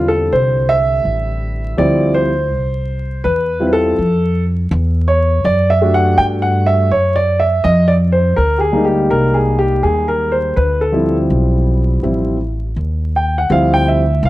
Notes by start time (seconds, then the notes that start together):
Already playing: E2 D3 G3 C4 E4
0.08 A4
0.32 C2 C5
0.69 E5
1.05 A1
1.77 D2 F3 G3 C4 E4 D5
2.14 C5
2.52 C2
3.24 E2 B4
3.60 G3 C4 E4 F4
3.67 B4
3.73 A4
3.98 F2
4.71 E2
5.08 C#5
5.44 F#2 D5
5.70 E5
5.81 A3 D4 F#4 G4
5.94 F#5
6.18 G2 G5
6.42 F#5
6.66 E5
6.90 F#2 C#5
7.16 D5
7.39 E5
7.64 F2 D#5
7.88 D5
8.12 C5
8.36 D2 A#4
8.58 G4 G#4
8.72 G3 G#3 A#3 D#4
8.85 G4
9.10 C2 A#4
9.34 G#4
9.59 G4
9.83 D#2 G#4
10.08 A#4
10.32 C5
10.56 D2 B4
10.81 A4
10.92 F3 G3 C4 E4
11.30 B1
12.03 A1 F3 G3 C4 E4
12.76 D#2
13.16 G5
13.38 F#5
13.50 D2 F3 G3 C4 E4 F5
13.74 G5
13.88 E5
14.23 C2 F5